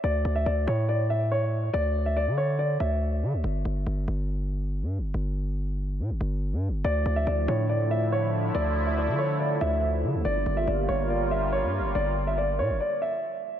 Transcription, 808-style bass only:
X:1
M:4/4
L:1/16
Q:1/4=141
K:Dm
V:1 name="808-style bass" clef=bass
D,,2 D,,2 D,,2 A,,8- A,,2 | D,,4- D,, D,4- D, D,,4 D, D,, | G,,,2 G,,,2 G,,,2 G,,,6- G,,, G,,3/2 G,,,3/2 | G,,,8 B,, G,,, G,,,3 G,,3/2 G,,,3/2 |
D,,2 D,,2 D,,2 A,,8- A,,2 | D,,4- D,, D,4- D, D,,4 D, D,, | G,,,2 G,,,2 G,,,2 G,,,6- G,,, G,,3/2 G,,,3/2 | G,,,6 B,, G,,, z8 |]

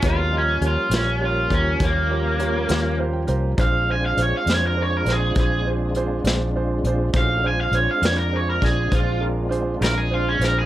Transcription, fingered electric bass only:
X:1
M:12/8
L:1/16
Q:3/8=67
K:Bbmix
V:1 name="Fingered electric bass" clef=bass
E,,4 E,, z B,,,4 E,,2 E,,6 E,,4 C,,2 | B,,,4 B,,, z F,,4 B,,,2 B,,,6 B,,,4 B,,,2 | B,,,4 B,,, z F,,4 B,,,2 B,,,6 B,,,4 B,,,2 |]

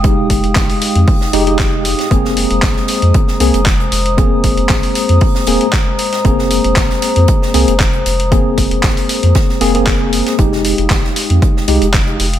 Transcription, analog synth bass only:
X:1
M:4/4
L:1/16
Q:"Swing 16ths" 1/4=116
K:Ab
V:1 name="Analog synth bass" clef=bass
F,,,3 F,,, A,,, z2 F,, z2 F,,,4- F,,, z | F,,,3 F,,, A,,, z2 F,, z2 C,, F,,,3 F,,,2- | F,,,3 F,,, A,,, z2 F,, z2 E,,, z4 z | F,,,3 F,,, A,,, z2 F,, z2 C,, F,,,3 F,,,2- |
F,,,3 F,,, A,,, z2 F,, z2 F,,,4- F,,, z | F,,,3 F,,, A,,, z2 F,, z2 C,, F,,,3 F,,,2 |]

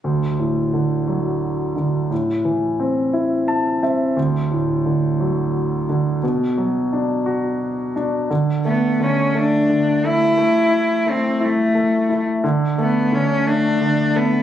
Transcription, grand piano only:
X:1
M:6/8
L:1/8
Q:3/8=58
K:D
V:1 name="Grand piano"
z6 | z4 a e | z6 | z6 |
z6 | z6 | z6 |]
V:2 name="Grand piano" clef=bass
D,, A,, D, F,2 D, | A,, E, =C E2 C | D,, A,, D, F,2 D, | B,, F, D F2 D |
D, A, D, A, D, A, | A, E A, E A, E | D, A, D, A, D, A, |]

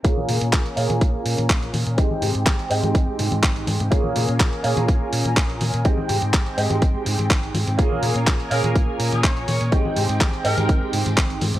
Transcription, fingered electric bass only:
X:1
M:4/4
L:1/16
Q:1/4=124
K:Bbdor
V:1 name="Fingered electric bass" clef=bass
B,,, z B,, B,, B,,, z B,, B,, B,,, z B,, B,, B,,, z B,, B,, | A,,, z A,, A,, A,,, z A,, A,, A,,, z A,, A,, A,,, z A,, A,, | B,,, z B,, B,, B,,, z B,, B,, B,,, z B,, B,, B,,, z B,, B,, | A,,, z A,, A,, A,,, z A,, A,, A,,, z A,, A,, A,,, z A,, A,, |
B,,, z B,, B,, B,,, z B,, B,, B,,, z B,, B,, B,,, z B,, B,, | A,,, z A,, A,, A,,, z A,, A,, A,,, z A,, A,, A,,, z A,, A,, |]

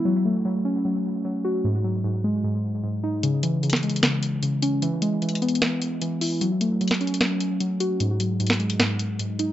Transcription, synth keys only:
X:1
M:4/4
L:1/8
Q:1/4=151
K:C#m
V:1 name="Synth keys" clef=bass
F, A, F, C F,2 F, F | G,, F, G,, G, G,,2 G,, D | C, E, C, G, C,2 C, C | E, G, E, B, E,2 E, E |
F, A, F, C F,2 F, F | G,, F, G,, G, G,,2 G,, D |]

